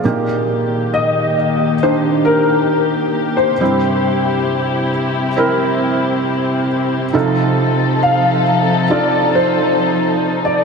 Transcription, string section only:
0.03 D#3 A#3 G4
3.61 C3 C4 E4
7.13 F3 D#4 A4

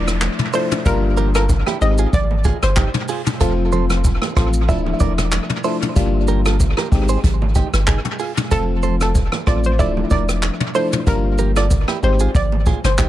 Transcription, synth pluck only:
0.55 C5
0.86 A#4
1.36 A#4
1.82 D#5
2.14 D5
2.63 C5
8.52 A4
9.02 A4
9.48 D5
9.66 C5
9.80 D5
10.12 D5
10.76 C5
11.08 A#4
11.57 D5
12.04 C5
12.36 D5
12.85 C5

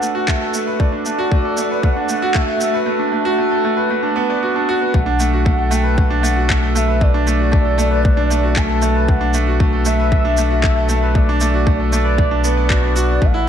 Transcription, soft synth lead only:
Already playing: F#5
0.28 E5
0.79 D5
1.83 F#5
2.35 E5
4.95 F#5
5.73 G5
5.99 F#5
6.76 E5
7.02 D5
8.56 A5
9.09 F#5
9.87 E5
11.16 D5
11.94 D5
12.71 D5
13.24 F#5

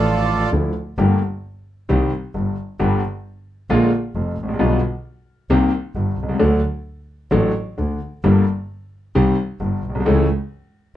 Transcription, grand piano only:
Already playing: A1 A2 D3 F3 A3 E5
0.52 D2 D3 F3 A3 E4
0.98 G1 G2 D3 A3 A#3 G4
1.89 C2 C3 D#3 G3 C4 G4
2.34 G1 G2
2.79 G1 G2 D3 G3 B3 G4
3.70 A#1 A#2 D3 G#3 A#3 F4
4.15 F1 F2
4.43 G#1
4.48 A1
4.54 A#1
4.59 B1 B2 D3 G3 B3 F4
5.50 C2 C3 D#3 A#3 C4 G4
5.95 G1 G2
6.23 B1
6.29 C2
6.34 C#2
6.39 D2 D3 F#3 A3 D4 A4
7.31 A1 A2 F#3 A3 D4 A4
7.78 D2 D3
8.24 G1 G2 G3 A#3 D4 A4
9.15 C2 C3 D#3 G3 C4 G4
9.60 G1 G2
9.90 A#1
9.95 B1
10.00 C2
10.05 C#2 C#3 E3 A3 C#4 A4

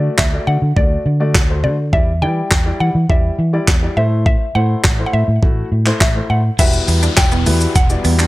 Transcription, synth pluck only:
Already playing: D5
0.18 E5
0.47 F#5
0.76 D5
1.64 D5
1.93 E5
2.22 G5
2.80 F#5
3.10 E5
3.97 E5
4.26 E5
4.55 F#5
5.06 F#5
5.13 E5
6.01 E5
6.30 F#5
6.59 E5
7.17 G5
7.76 F#5

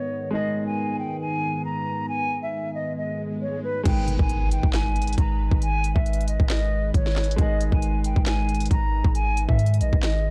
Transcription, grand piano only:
Already playing: D#3 G#3 B4
0.31 D#3 G#3
0.35 G#4
3.83 D#3 G#3
3.88 B4
7.36 D#3 G#3
7.41 G#4

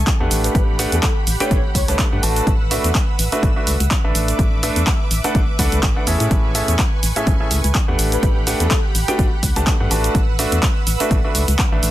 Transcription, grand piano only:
0.20 A3 D4 G4 B4 F#5
0.79 A3 D4 G4 B4 F#5
1.40 A3 D4 G4 B4 G5
1.88 A3 D4 G4 B4 A5
2.12 A3 D4 G4 B4 F#5
2.23 A3 D4 F#4 B4 A5
2.71 A3 D4 F#4 B4 E5
3.32 A3 D4 F#4 B4 E5
3.56 A3 D4 F#4 B4 E5
4.04 A3 D4 A4 B4 E5
4.63 A3 D4 A4 B4 E5
5.24 A3 D4 A4 B4 F#5
5.59 A3 D4 A4 B4 F#5
5.96 A3 D4 A4 B4 F#5
6.07 A2 C#4 G#4 A4 E5
6.55 A2 C#4 G#4 A4 E5
7.16 A2 C#4 G#4 A4 E5
7.40 A2 C#4 G#4 A4 E5
7.88 A3 D4 G4 B4 F#5
8.47 A3 D4 G4 B4 F#5
9.08 A3 D4 G4 B4 G5
9.56 A3 D4 G4 B4 A5
9.80 A3 D4 G4 B4 F#5
9.91 A3 D4 F#4 B4 A5
10.39 A3 D4 F#4 B4 E5
11.00 A3 D4 F#4 B4 E5
11.24 A3 D4 F#4 B4 E5
11.72 A3 D4 A4 B4 E5

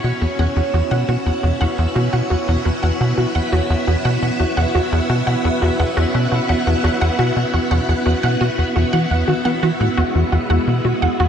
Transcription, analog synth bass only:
0.04 B2
0.22 E2
0.39 E2
0.56 E2
0.74 E2
0.91 B2
1.08 B2
1.26 E2
1.43 E2
1.61 E2
1.78 E2
1.96 B2
2.13 B2
2.31 E2
2.48 E2
2.66 E2
2.83 E2
3.01 B2
3.18 B2
3.35 E2
3.52 E2
3.70 E2
3.88 E2
4.05 B2
4.22 B2
4.40 E2
4.57 E2
4.75 E2
4.92 E2
5.09 B2
5.27 B2
5.45 E2
5.62 E2
5.79 E2
5.97 E2
6.14 B2
6.32 B2
6.49 E2
6.67 E2
6.84 E2
7.01 E2
7.19 B2
7.36 B2
7.54 E2
7.71 E2
7.89 E2
8.06 E2
8.24 B2
8.41 B2
8.58 E2
8.76 E2
8.93 E3
9.11 E2
9.28 D#3
9.45 B3
9.63 E3
9.80 A2
9.98 E2
10.15 E2
10.32 E2
10.50 E2
10.67 B2
10.85 B2
11.02 E2
11.20 E2

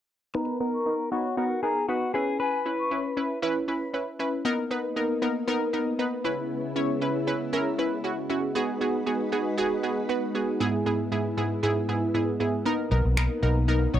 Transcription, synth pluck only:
0.35 B3 D#4 A#4
0.60 B3 D#4 A#4
0.86 B3 D#4 A#4
1.12 B3 D#4 C#5
1.37 B3 D#4 A#4
1.63 B3 D#4 A#4
1.89 B3 D#4 B4
2.14 C#4 E4 B4
2.66 C#4 E4 B4
2.91 C#4 E4 B4
3.17 C#4 E4 B4
3.42 C#4 E4 B4
3.68 C#4 E4 B4
3.94 C#4 E4 B4
4.19 C#4 E4 B4
4.45 B3 D#4 A#4
4.71 B3 D#4 B4
4.96 B3 D#4 A#4
5.22 B3 D#4 A#4
5.47 B3 D#4 A#4
5.73 B3 D#4 A#4
5.99 B3 D#4 B4
6.24 C#4 E4 B4
6.76 C#4 E4 C#5
7.01 C#4 E4 B4
7.27 C#4 E4 B4
7.53 C#4 E4 A#4
7.78 C#4 E4 B4
8.04 C#4 E4 F#4
8.30 C#4 E4 F#4
8.55 B3 F#4 G#4
8.81 B3 F#4 G#4
9.06 B3 F#4 G#4
9.32 B3 F#4 G#4
9.58 B3 F#4 G#4
9.83 B3 F#4 G#4
10.09 B3 F#4 B4
10.35 B3 F#4 G#4
10.60 G#2 B3 E4 G#4
10.86 G#2 B3 E4 G#4
11.12 G#2 B3 E4 G#4
11.37 G#2 B3 E4 G#4
11.63 G#2 B3 E4 G#4
11.89 G#2 B3 E4 G#4
12.14 G#2 B3 E4 G#4
12.40 G#2 B3 E4 G#4
12.66 B3 D#4 A#4
12.91 B3 D#4 A#4
13.17 B3 D#4 A#4
13.42 B3 D#4 A#4
13.68 B3 D#4 A#4
13.94 B3 D#4 C#5

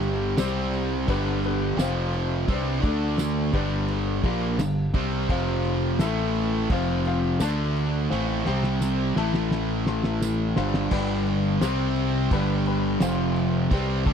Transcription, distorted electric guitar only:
Already playing: G2 D3 G3
0.37 C3 G3 C4
1.06 G2 D3 G3
1.76 F2 C3 F3
2.47 C3 G3 C4
2.81 D3 A3 D4
3.52 G2 D3 G3
4.23 A#2 F3 A#3
4.59 G2 D3
4.94 C3 G3 C4
5.29 F2 C3 F3
6.00 A2 E3 A3
6.70 F2 C3 F3
7.40 D3 A3 D4
8.11 A2 E3 A3
8.47 C3 G3 C4
9.16 A2 E3 A3
10.56 G2 D3 G3
10.91 G2 D3 G3
11.60 C3 G3 C4
12.32 G2 D3 G3
13.02 F2 C3 F3
13.69 C3 G3 C4
14.04 D3 A3 D4

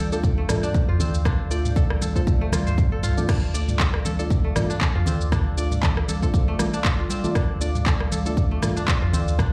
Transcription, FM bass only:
Already playing: D2
0.74 C2
0.88 F2
1.00 D2
1.25 D2
2.27 C2
2.52 D2
3.03 C2
3.29 D2
4.81 C2
4.95 F2
5.07 D2
5.32 D2
6.34 C2
7.35 D2
8.88 C2
9.02 F2
9.13 D2
9.39 D2

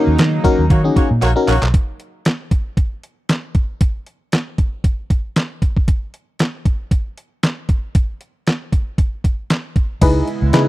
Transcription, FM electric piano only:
Already playing: C#4 D#4 F#4 A#4
0.44 C#4 D#4 F#4 A#4
0.84 C#4 D#4 F#4 G#4
1.36 C#4 D#4 F#4 A#4
10.01 D#4 E4 G#4 B4
10.53 D#4 E4 G#4 B4

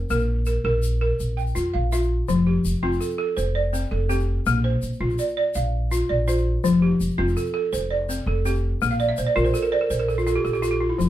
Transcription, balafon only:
Already playing: C4 C5
0.10 A#3 A#4
0.47 A#4
0.65 A#4
1.01 A#4
1.37 G5
1.55 F4
1.74 F5
1.92 F4 E5
2.28 F3
2.47 G4
2.83 C4 F4
3.01 A4
3.18 A4
3.37 C5
3.55 D5
3.73 C4
3.91 A4
4.09 C4 G4
4.47 A#3
4.64 C5
5.01 F4
5.19 D5
5.37 D5
5.55 F5
5.91 F4
6.09 D5
6.28 F4 C5
6.64 F3
6.82 G4
7.18 C4 F4
7.37 A4
7.54 A4
7.73 C5
7.91 D5
8.09 C4
8.27 A4
8.46 C4 G4
8.82 A#3
8.91 F5
9.00 D5
9.09 E5
9.18 C5
9.27 D5
9.36 F4 A#4
9.45 C5
9.54 A4
9.62 A#4
9.72 C5 D5
9.81 A#4
9.90 C5
9.99 A#4
10.08 A4
10.18 F4
10.27 F4 A4
10.35 G4
10.45 A4
10.53 G4
10.62 F4 A4
10.71 G4
10.81 F4
10.89 E4
10.98 F3

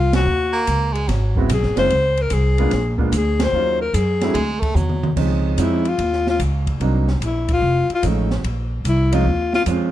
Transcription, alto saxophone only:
Already playing: F4
0.16 F#4
1.54 G#4
1.78 C5
2.21 A#4
2.33 G#4
3.17 G#4
3.43 C5
3.81 A#4
3.95 G#4
5.61 E4
5.88 F4
6.30 F4
7.25 E4
7.53 F4
7.95 F4
8.88 E4
9.14 F4
9.55 F4

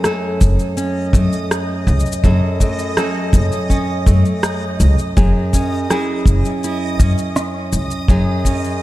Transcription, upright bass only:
0.41 F#1
1.13 F#2
1.87 C#2
2.24 F#1
3.33 F#1
4.07 F#2
4.80 C#2
5.17 F#1
6.26 F#1
7.00 F#2
7.73 C#2
8.09 F#1

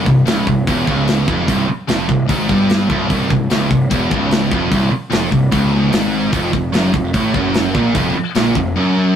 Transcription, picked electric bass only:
0.06 C1
0.26 C#1
0.47 C1
0.67 E1
0.88 C#1
1.28 F1
1.49 C1
1.69 muted picked electric bass stroke
1.89 F1
2.09 C1
2.30 G#1
2.50 G1
2.90 C1
3.10 C1
3.31 C1
3.51 C#1
3.71 C1
3.91 E1
4.11 C#1
4.52 F1
4.72 C1
4.93 muted picked electric bass stroke
5.13 F1
5.33 C1
5.52 C#1
5.94 G#1
6.33 F1
6.53 F1
6.75 F#1
6.94 F1
7.14 A1
7.34 F#1
7.75 A#1
7.95 F1
8.16 muted picked electric bass stroke
8.35 A#1
8.56 F1

